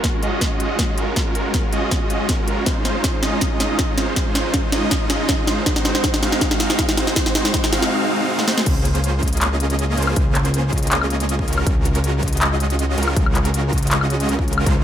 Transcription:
Already playing: supersaw synth G#3 C#4 F4 F#4 A#4
0.04 kick, snare, closed hi-hat
0.23 supersaw synth G#3 C#4 F4 F#4 D#5, closed hi-hat
0.41 kick, snare, closed hi-hat
0.60 closed hi-hat
0.79 kick, snare, closed hi-hat
0.98 supersaw synth G#3 C#4 F4 F#4 A#4, closed hi-hat
1.16 supersaw synth G#3 C#4 F4 F#4 A#4, kick, snare, closed hi-hat
1.35 closed hi-hat
1.54 kick, snare, closed hi-hat
1.73 supersaw synth G#3 C#4 F4 F#4 D#5, closed hi-hat
1.91 kick, snare, closed hi-hat
2.10 closed hi-hat
2.29 supersaw synth G#3 C#4 F4 F#4 A#4, kick, snare, closed hi-hat
2.48 closed hi-hat
2.66 supersaw synth G#3 C#4 D#4 F4 C5, kick, snare, closed hi-hat
2.85 snare, closed hi-hat
3.04 kick, snare, closed hi-hat
3.23 supersaw synth G#3 C#4 D#4 F4 D#5, snare, closed hi-hat
3.41 kick, snare, closed hi-hat
3.60 snare, closed hi-hat
3.79 kick, snare, closed hi-hat
3.98 supersaw synth G#3 C#4 D#4 F4 C5, snare, closed hi-hat
4.16 supersaw synth G#3 C#4 D#4 F4 C5, kick, snare, closed hi-hat
4.35 snare, closed hi-hat
4.54 kick, snare, closed hi-hat
4.72 supersaw synth G#3 C#4 D#4 F4 D#5, snare, closed hi-hat
4.91 kick, snare, closed hi-hat
5.10 snare, closed hi-hat
5.29 kick, snare, closed hi-hat
5.47 supersaw synth G#3 C#4 D#4 F4 C5, snare, closed hi-hat
5.66 supersaw synth G#3 C4 D#4 F#4 C5, kick, snare, closed hi-hat
5.76 snare
5.85 snare, closed hi-hat
5.95 snare
6.04 kick, snare, closed hi-hat
6.14 snare
6.23 supersaw synth G#3 C4 D#4 F#4 F5, snare, closed hi-hat
6.32 snare
6.41 kick, snare, closed hi-hat
6.51 snare
6.60 snare, closed hi-hat
6.70 snare
6.79 kick, snare, closed hi-hat
6.89 snare
6.97 supersaw synth G#3 C4 D#4 F#4 C5, snare, closed hi-hat
7.07 snare
7.16 supersaw synth G#3 C4 D#4 F#4 C5, kick, snare, closed hi-hat
7.26 snare
7.35 snare, closed hi-hat
7.45 snare
7.54 kick, snare, closed hi-hat
7.64 snare
7.73 supersaw synth G#3 C4 D#4 F#4 F5, snare, closed hi-hat
7.83 snare
8.39 snare
8.48 supersaw synth G#3 C4 D#4 F#4 C5, snare
8.58 snare
8.66 analog synth bass C#2, supersaw synth A#3 C#4 F4 G#4 C5, kick, closed hi-hat, crash
8.85 closed hi-hat
8.95 closed hi-hat
9.04 closed hi-hat
9.23 analog synth bass C#2, supersaw synth A#3 C#4 F4 G#4 D#5, kick, closed hi-hat
9.28 closed hi-hat
9.33 closed hi-hat
9.37 closed hi-hat
9.41 clap, closed hi-hat
9.60 closed hi-hat
9.70 closed hi-hat
9.79 closed hi-hat
9.97 analog synth bass C#2, supersaw synth A#3 C#4 F4 G#4 C5, closed hi-hat
10.02 closed hi-hat
10.07 high woodblock
10.16 analog synth bass C#2, supersaw synth A#3 C#4 F4 G#4 C5, kick, closed hi-hat
10.35 clap, closed hi-hat
10.45 closed hi-hat
10.54 closed hi-hat
10.73 analog synth bass C#2, supersaw synth A#3 C#4 F4 G#4 D#5, kick, closed hi-hat
10.78 closed hi-hat
10.83 closed hi-hat
10.87 closed hi-hat
10.92 clap, closed hi-hat
11.02 high woodblock
11.10 closed hi-hat
11.20 closed hi-hat
11.29 closed hi-hat
11.39 kick
11.48 analog synth bass C#2, supersaw synth G#3 C#4 F4 F#4 A#4, closed hi-hat
11.53 closed hi-hat
11.58 high woodblock
11.66 analog synth bass C#2, supersaw synth G#3 C#4 F4 F#4 A#4, kick, closed hi-hat
11.85 closed hi-hat
11.95 closed hi-hat
12.04 closed hi-hat
12.23 analog synth bass C#2, supersaw synth G#3 C#4 F4 F#4 D#5, kick, closed hi-hat
12.28 closed hi-hat
12.33 closed hi-hat
12.37 closed hi-hat
12.42 clap, closed hi-hat
12.60 closed hi-hat
12.70 closed hi-hat
12.79 closed hi-hat
12.98 analog synth bass C#2, supersaw synth G#3 C#4 F4 F#4 A#4, closed hi-hat
13.03 closed hi-hat
13.08 high woodblock
13.16 analog synth bass C#2, supersaw synth G#3 C#4 F4 F#4 A#4, kick, closed hi-hat
13.26 high woodblock
13.35 clap, closed hi-hat
13.45 closed hi-hat
13.54 closed hi-hat
13.73 analog synth bass C#2, supersaw synth G#3 C#4 F4 F#4 D#5, kick, closed hi-hat
13.78 closed hi-hat
13.83 closed hi-hat
13.87 closed hi-hat
13.91 clap, closed hi-hat
14.01 high woodblock
14.10 closed hi-hat
14.20 closed hi-hat
14.29 analog synth bass C#2, supersaw synth G#3 C#4 F4 F#4 A#4, closed hi-hat
14.39 kick
14.48 closed hi-hat
14.53 closed hi-hat
14.58 high woodblock
14.66 analog synth bass C#2, supersaw synth G#3 C#4 D#4 F4 C5, kick, closed hi-hat

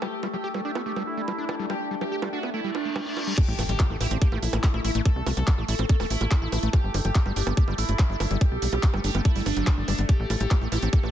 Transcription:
Already playing: synth drone A3 A4, ambient pad E4 A4 E5 A5
0.02 acid bass G3, ambient pad D4, analog synth lead G4, high bongo
0.19 ambient pad G4
0.23 acid bass G3, high bongo
0.33 acid bass F#3, analog synth lead G4, ambient pad D5
0.44 acid bass G4
0.54 acid bass G3, high bongo
0.62 acid bass D4, analog synth lead G4, ambient pad G5
0.75 acid bass B3, high bongo
0.86 acid bass A3, analog synth lead G4
0.96 acid bass G3, high bongo
1.07 analog synth lead E4
1.17 acid bass A3
1.28 acid bass G3, high bongo
1.38 acid bass D4
1.49 acid bass D4, high bongo
1.59 acid bass G3
1.70 acid bass G3, analog synth lead G4, high bongo
1.91 acid bass G3
2.01 acid bass F#3, analog synth lead G4, high bongo
2.12 acid bass G4
2.22 acid bass G3, high bongo
2.33 acid bass D4, analog synth lead F#4
2.43 acid bass B3, high bongo
2.54 acid bass A3, analog synth lead E4, reverse cymbal
2.64 acid bass G3
2.75 analog synth lead D4, high bongo
2.85 acid bass A3
2.96 acid bass G3, high bongo
3.06 acid bass D4
3.17 acid bass D4, high bongo
3.27 acid bass G3
3.38 acid bass A3, synth drone A3 A4, analog synth lead G4, kick, closed hi-hat, crash, impact
3.48 analog synth bass A1
3.59 analog synth bass A1, acid bass A3, open hi-hat, high bongo
3.69 analog synth bass A1, acid bass G3, analog synth lead G4, closed hi-hat
3.80 acid bass A3, kick, clap, closed hi-hat, high bongo
3.90 analog synth bass A1, acid bass A3
4.01 analog synth bass A1, acid bass E4, analog synth lead G4, open hi-hat, high bongo
4.11 analog synth bass A1, acid bass C4, closed hi-hat
4.22 acid bass A#3, analog synth lead G4, kick, closed hi-hat
4.32 analog synth bass A1, acid bass A3, high bongo
4.43 analog synth bass A#1, analog synth lead E4, open hi-hat
4.53 analog synth bass A1, acid bass A#3, closed hi-hat, high bongo
4.64 acid bass A3, kick, clap, closed hi-hat
4.74 analog synth bass A1, acid bass E4, high bongo
4.84 analog synth bass A1, acid bass E4, open hi-hat
4.95 analog synth bass A1, acid bass A3, closed hi-hat
5.05 acid bass A3, analog synth lead A4, kick, closed hi-hat, high bongo
5.16 analog synth bass C2
5.26 analog synth bass C2, acid bass A3, open hi-hat, high bongo
5.37 analog synth bass C2, acid bass G3, analog synth lead A4, closed hi-hat
5.47 acid bass A3, kick, clap, closed hi-hat, high bongo
5.58 analog synth bass A1, acid bass A3
5.68 analog synth bass A1, acid bass E4, analog synth lead A4, open hi-hat
5.79 analog synth bass A1, acid bass C4, closed hi-hat, high bongo
5.89 acid bass A#3, analog synth lead A4, kick, closed hi-hat
6.00 analog synth bass E1, acid bass A3, open hi-hat, high bongo
6.10 analog synth bass A1, analog synth lead E4, open hi-hat
6.21 analog synth bass A1, acid bass A#3, closed hi-hat, high bongo
6.31 acid bass A3, kick, clap, closed hi-hat
6.42 analog synth bass A1, acid bass E4
6.52 analog synth bass A1, acid bass E4, open hi-hat, high bongo
6.63 analog synth bass A1, acid bass A3, closed hi-hat
6.73 acid bass G3, analog synth lead G4, kick, closed hi-hat, high bongo
6.84 analog synth bass G1
6.94 analog synth bass G1, acid bass G3, open hi-hat, high bongo
7.05 analog synth bass G1, acid bass F#3, analog synth lead G4, closed hi-hat
7.15 acid bass G4, kick, clap, closed hi-hat
7.26 analog synth bass G1, acid bass G3, high bongo
7.36 analog synth bass G1, acid bass D4, analog synth lead G4, open hi-hat
7.47 analog synth bass G1, acid bass B3, closed hi-hat, high bongo
7.57 acid bass A3, analog synth lead G4, kick, closed hi-hat
7.68 analog synth bass G1, acid bass G3, high bongo
7.78 analog synth bass A1, analog synth lead E4, open hi-hat
7.89 analog synth bass G1, acid bass A3, closed hi-hat
7.99 acid bass G3, kick, clap, closed hi-hat, high bongo
8.10 analog synth bass G1, acid bass D4
8.20 analog synth bass G1, acid bass D4, open hi-hat, high bongo
8.31 analog synth bass G1, acid bass G3, closed hi-hat
8.41 acid bass G3, analog synth lead G4, kick, closed hi-hat, high bongo
8.52 analog synth bass B1
8.62 analog synth bass B1, acid bass G3, open hi-hat
8.73 analog synth bass B1, acid bass F#3, analog synth lead G4, closed hi-hat, high bongo
8.83 acid bass G4, kick, clap, closed hi-hat
8.94 analog synth bass G1, acid bass G3, high bongo
9.04 analog synth bass G1, acid bass D4, analog synth lead G4, open hi-hat
9.15 analog synth bass G1, acid bass B3, closed hi-hat, high bongo
9.25 acid bass A3, analog synth lead E4, kick, closed hi-hat
9.36 analog synth bass G1, acid bass G3, open hi-hat
9.46 analog synth bass G1, acid bass A3, analog synth lead D4, open hi-hat, high bongo
9.57 analog synth bass G1, acid bass F#3, closed hi-hat
9.67 acid bass A3, kick, clap, closed hi-hat, high bongo
9.78 analog synth bass G1
9.88 analog synth bass G1, acid bass G3, open hi-hat, high bongo
9.98 analog synth bass G1, acid bass B3, closed hi-hat
10.09 acid bass A3, analog synth lead G4, kick, closed hi-hat
10.19 analog synth bass A1
10.30 analog synth bass A1, acid bass A3, open hi-hat, high bongo
10.40 analog synth bass A1, acid bass G3, analog synth lead G4, closed hi-hat
10.51 acid bass A3, kick, clap, closed hi-hat, high bongo
10.61 analog synth bass A1, acid bass A3
10.72 analog synth bass A1, acid bass E4, analog synth lead G4, open hi-hat, high bongo
10.82 analog synth bass A1, acid bass C4, closed hi-hat
10.93 acid bass A#3, analog synth lead G4, kick, closed hi-hat
11.03 analog synth bass A1, acid bass A3, high bongo

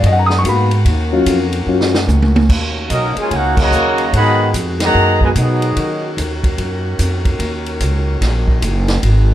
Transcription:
Already playing: saxophone section D#3 B3 F#4 G#4
0.03 upright bass F#2, grand piano D#5, kick, ride
0.12 grand piano F#5
0.19 grand piano A#5
0.26 grand piano D#6, snare
0.38 grand piano C#6
0.44 upright bass G#2, grand piano A#3 B3 F#4, kick, hi-hat pedal, ride
0.49 grand piano B5
0.71 ride
0.85 upright bass D#2, saxophone section A#3 C#4, kick, ride
1.13 grand piano F#3 C#4 F4
1.26 upright bass F2, kick, hi-hat pedal, ride
1.53 ride
1.66 upright bass F#2, grand piano F#3 C#4 F4
1.81 snare
1.95 snare
2.07 upright bass C#2, hi-hat pedal, high tom
2.22 high tom
2.36 high tom
2.48 upright bass D#2, saxophone section D#3 A#3 C#4 F#4, kick, crash
2.90 upright bass B1, trombone section F#3 A#3 D#4, trumpet section C#4 F#4 A#4 D#5, kick, hi-hat pedal, ride
3.16 trombone section G#3, trumpet section F4 A#4 C#5 G#5, muted upright bass stroke, ride
3.31 upright bass C#2, trombone section A#3 C#4 F#4, trumpet section D#4, kick, ride
3.35 trumpet section A#4 C#5 F#5
3.57 trombone section C#3 F#3 A#3, trumpet section F#4 C#5 D#5 A#5, kick, crash
3.71 upright bass D#2, hi-hat pedal
3.98 ride
4.13 upright bass G#2, saxophone section B2 G#3, trombone section D#3 F#3 B3, trumpet section G#4 D#5 F#5 B5, kick, ride
4.54 upright bass F2, kick, hi-hat pedal, ride
4.80 trombone section D#3 F#3 A#3, trumpet section A#5, snare, ride
4.84 trumpet section G#4 D#5 F#5
4.94 upright bass F#2, kick
5.21 trombone section B2 D#3 G#3, trumpet section F#4 B4 G#5, kick
5.25 trumpet section D#5
5.35 upright bass B2, trombone section F#3 B3 D#4, trumpet section B3 G#4, kick, hi-hat pedal, ride
5.40 trumpet section F#4 D#5
5.62 ride
5.76 upright bass D#3, saxophone section A#3 C#4, kick, ride
6.17 upright bass D#2, kick, hi-hat pedal, ride
6.44 kick, ride
6.58 upright bass F#2, kick, ride
6.99 upright bass F2, kick, hi-hat pedal, ride
7.25 kick, ride
7.39 upright bass D#2, kick, ride
7.66 ride
7.80 upright bass C#2, kick, hi-hat pedal, ride
8.21 upright bass A#1, kick, snare, ride
8.48 kick
8.62 upright bass F#1, kick, hi-hat pedal, ride
8.88 snare, ride
9.03 upright bass G#1, saxophone section G#3 B3 F#4, kick, ride

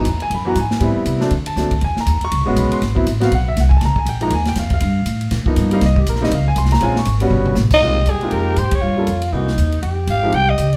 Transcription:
Already playing: grand piano A#5
0.05 upright bass E2, kick, hi-hat pedal, ride
0.20 grand piano G#5, ride
0.30 upright bass F#2, kick, ride
0.34 grand piano B5
0.45 grand piano E3 F#3 B3 F#4 A#5
0.55 upright bass G#2, grand piano G#5, kick, hi-hat pedal, ride
0.71 snare
0.80 upright bass A2, grand piano G3 B3 C4 E4, kick, ride
0.96 muted upright bass stroke
1.06 upright bass C3, kick, hi-hat pedal, ride
1.20 grand piano F#3 A3 C4 D4, snare
1.31 upright bass D3, kick, ride
1.46 grand piano A5, ride
1.56 upright bass D2, grand piano F#3 A3 C4 D4, kick, snare, hi-hat pedal
1.71 kick, ride
1.81 upright bass E2, grand piano G#5, kick, ride
1.97 grand piano A#5, muted upright bass stroke, snare
2.06 upright bass D#2, kick, hi-hat pedal, ride
2.21 grand piano C#6, muted upright bass stroke, ride
2.32 upright bass C#2, kick, ride
2.41 upright bass B1
2.46 upright bass G#1, grand piano G#3 B3 C#4 F#4
2.56 upright bass B1, grand piano B5, kick, hi-hat pedal, ride
2.71 grand piano C6, muted upright bass stroke, ride
2.82 upright bass G#1, kick, snare, ride
2.95 grand piano F#3 B3 C4 E4, kick
3.06 upright bass A1, kick, hi-hat pedal, ride
3.20 grand piano F#3 B3 C4 F#4 F5, snare, ride
3.31 upright bass B1, grand piano F#5, kick, ride
3.48 grand piano E5
3.56 upright bass C2, kick, snare, hi-hat pedal, ride
3.60 grand piano F#5
3.69 grand piano G#5, kick
3.77 grand piano A5
3.81 upright bass C#2, snare, ride
3.85 grand piano A#5
3.96 grand piano G#5, muted upright bass stroke, kick
4.05 upright bass A#1, grand piano G5, kick, hi-hat pedal, ride
4.21 grand piano F3 G#3 A#3 D#4 A#5, ride
4.30 upright bass D#2, grand piano G#5, kick, ride
4.45 grand piano G5, snare, ride
4.55 upright bass F2, grand piano F5, kick, snare, hi-hat pedal, ride
4.70 grand piano F5, kick, ride
4.80 upright bass G2, kick, ride
5.06 upright bass A2, kick, hi-hat pedal, ride
5.21 ride
5.31 upright bass A#2, kick, snare, ride
5.46 grand piano F3 A#3 B3 D#4, muted upright bass stroke, kick
5.56 upright bass G2, hi-hat pedal, ride
5.71 grand piano G3 A#3 C4 D#4 F5, ride
5.81 upright bass C2, kick, snare, ride
5.86 grand piano D#5
5.96 grand piano G4, kick
6.07 upright bass A#1, grand piano A#4, hi-hat pedal, ride
6.16 snare
6.21 grand piano G3 A#3 C4 D#4 D#5, snare
6.31 upright bass C#2, grand piano F5, kick, ride
6.48 grand piano G#5
6.56 upright bass C2, grand piano C6, kick, hi-hat pedal, ride
6.65 snare
6.71 grand piano A#5, snare, ride
6.81 upright bass A#1, grand piano G#3 C4 C#4 F4 G#5, kick, ride
6.96 grand piano C#6, snare
7.05 upright bass G#1, kick, hi-hat pedal, ride
7.20 grand piano G3 B3 C#4 F#4, ride
7.30 upright bass G1, mid tom
7.46 mid tom
7.55 upright bass A1, snare, hi-hat pedal
7.71 soprano saxophone D#5, muted upright bass stroke, kick, crash
7.81 upright bass C2, grand piano G#3 A#3 C4 D#4 F4, tenor saxophone G4, kick
8.06 upright bass G2, kick, hi-hat pedal, ride
8.10 soprano saxophone G#4
8.21 grand piano G#3 A#3 C4 D#4 F4, muted upright bass stroke, ride
8.31 upright bass F2, soprano saxophone A#4, kick, ride
8.56 upright bass G#2, soprano saxophone C5, kick, hi-hat pedal, ride
8.71 soprano saxophone C#5, kick, ride
8.81 upright bass G2, tenor saxophone F4
8.97 grand piano G3 A#3 C#4 F4 A4
9.07 upright bass F2, kick, hi-hat pedal, ride
9.22 ride
9.32 upright bass C2, grand piano E3 A#3 C4 D#4 F#4, tenor saxophone D#4, kick
9.48 snare
9.57 upright bass D#2, kick, hi-hat pedal, ride
9.72 ride
9.82 upright bass F2, tenor saxophone G4, kick, ride
10.07 upright bass G#1, soprano saxophone F5, kick, hi-hat pedal, ride
10.23 grand piano F3 G#3 C4 D#4 G4
10.32 upright bass C2, soprano saxophone G5, kick, ride
10.50 soprano saxophone D#5
10.58 upright bass C#2, kick, hi-hat pedal, ride
10.73 ride

